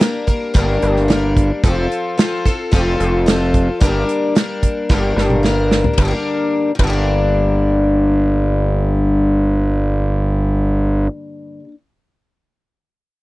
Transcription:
0.00 twelve-string acoustic guitar G3 A#3 D4 A#4, snare, closed hi-hat
0.27 twelve-string acoustic guitar G3 A#3 D4 A#4, kick, closed hi-hat
0.54 analog synth bass G1, twelve-string acoustic guitar G2 D3 G3 A#3 D4 A#4, kick, closed hi-hat
0.82 analog synth bass G1, closed hi-hat
0.96 snare
1.08 twelve-string acoustic guitar G3 A#3 D4 A#4, snare, closed hi-hat
1.37 kick, closed hi-hat
1.63 analog synth bass F1, twelve-string acoustic guitar F3 C4 F4 A4, kick, closed hi-hat
1.92 closed hi-hat
2.17 twelve-string acoustic guitar F3 C4 F4 A4, snare, closed hi-hat
2.45 twelve-string acoustic guitar C4 F4 A4, kick, closed hi-hat
2.71 analog synth bass F1, twelve-string acoustic guitar F3 C4 F4 A4, kick, closed hi-hat
3.00 analog synth bass F1, closed hi-hat
3.26 twelve-string acoustic guitar F3 C4 F4 A4, snare, closed hi-hat
3.54 kick, closed hi-hat
3.80 analog synth bass G1, twelve-string acoustic guitar G2 D3 G3 A#3 D4 A#4, kick, closed hi-hat
4.09 closed hi-hat
4.35 twelve-string acoustic guitar G3 A#3 D4 A#4, snare, closed hi-hat
4.63 kick, closed hi-hat
4.89 analog synth bass G1, twelve-string acoustic guitar G2 D3 G3 A#3 D4 A#4, kick, snare
5.16 analog synth bass G1, snare
5.30 mid tom
5.43 twelve-string acoustic guitar G3 A#3 D4 A#4, snare
5.71 snare
5.84 floor tom
5.93 twelve-string acoustic guitar G2
5.98 analog synth bass G1, twelve-string acoustic guitar D3 G3, kick, ride
6.05 twelve-string acoustic guitar A#3 D4
6.11 twelve-string acoustic guitar A#4
6.75 twelve-string acoustic guitar G2
6.79 analog synth bass G1, twelve-string acoustic guitar D3, kick, ride
6.84 twelve-string acoustic guitar G3 A#3
6.90 twelve-string acoustic guitar D4 A#4

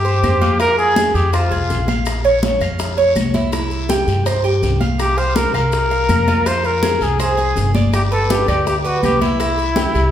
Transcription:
Already playing: upright bass G2, trumpet G4
0.05 cuban tres C5, high bongo, high conga, maracas
0.23 upright bass F2, high bongo, low bongo, high conga, short guiro, claves, maracas
0.41 cuban tres F4, high bongo, high conga, short guiro, maracas
0.60 cuban tres F4, trumpet A#4, high bongo, high conga, long guiro, claves, maracas
0.78 trumpet G#4, high conga, maracas
0.96 cuban tres G#4, high bongo, high conga, short guiro, maracas
1.14 upright bass F2, trumpet G4, high bongo, high conga, short guiro, maracas
1.33 trumpet F4, cuban tres C5, high bongo, high conga, long guiro, claves, maracas
1.51 upright bass C2, cuban tres G#4, high bongo, high conga, maracas
1.69 upright bass A#1, high bongo, low bongo, high conga, short guiro, maracas
1.88 cuban tres F5, high bongo, high conga, short guiro, maracas
2.06 high bongo, high conga, long guiro, claves, maracas
2.24 cuban tres C#5, high conga, maracas
2.42 high bongo, high conga, short guiro, maracas
2.60 upright bass F2, cuban tres F5, high bongo, high conga, short guiro, claves, maracas
2.79 high bongo, high conga, long guiro, maracas
2.98 cuban tres C#5, high bongo, high conga, maracas
3.16 upright bass C2, high bongo, low bongo, high conga, short guiro, claves, maracas
3.34 cuban tres E4, high bongo, high conga, short guiro, maracas
3.52 cuban tres E4, high bongo, high conga, long guiro, claves, maracas
3.71 high conga, maracas
3.89 cuban tres G4, high bongo, high conga, short guiro, maracas
4.07 upright bass G2, high bongo, high conga, short guiro, maracas
4.26 cuban tres C5, high bongo, high conga, long guiro, claves, maracas
4.44 cuban tres G4, high bongo, high conga, maracas
4.62 upright bass C2, high bongo, low bongo, high conga, short guiro, maracas
4.80 cuban tres F5, high bongo, high conga, short guiro, maracas
4.99 trumpet G4, high bongo, high conga, long guiro, claves, maracas
5.18 trumpet C5, cuban tres F5, high conga, maracas
5.36 trumpet A#4, high bongo, high conga, short guiro, maracas
5.54 upright bass C2, trumpet A#4, cuban tres F5, high bongo, high conga, short guiro, claves, maracas
5.72 high bongo, high conga, long guiro, maracas
5.91 cuban tres F5, high bongo, high conga, maracas
6.09 upright bass F2, high bongo, low bongo, high conga, short guiro, claves, maracas
6.28 cuban tres F4, high bongo, high conga, short guiro, maracas
6.46 cuban tres F4, trumpet C5, high bongo, high conga, long guiro, claves, maracas
6.64 trumpet A#4, high conga, maracas
6.83 cuban tres G#4, high bongo, high conga, short guiro, maracas
7.01 upright bass C2, trumpet G#4, high bongo, high conga, short guiro, maracas
7.19 trumpet G#4, cuban tres C5, high bongo, high conga, long guiro, claves, maracas
7.38 cuban tres G#4, high bongo, high conga, maracas
7.56 upright bass G1, high bongo, low bongo, high conga, short guiro, maracas
7.75 cuban tres D5, high bongo, high conga, short guiro, maracas
7.93 trumpet G4, high bongo, high conga, long guiro, claves, maracas
8.12 trumpet A4, cuban tres B4, high conga, maracas
8.30 trumpet G4, high bongo, high conga, short guiro, maracas
8.48 upright bass D2, trumpet G4, cuban tres D5, high bongo, high conga, short guiro, claves, maracas
8.67 trumpet G4, high bongo, high conga, long guiro, maracas
8.85 trumpet F#4, cuban tres B4, high bongo, high conga, maracas
9.03 upright bass C2, trumpet G4, high bongo, low bongo, high conga, short guiro, claves, maracas
9.21 cuban tres E4, trumpet E4, high bongo, high conga, short guiro, maracas
9.40 cuban tres E4, high bongo, high conga, long guiro, claves, maracas
9.58 high conga, maracas
9.76 cuban tres G4, high bongo, high conga, short guiro, maracas
9.94 upright bass C2, high bongo, high conga, short guiro, maracas

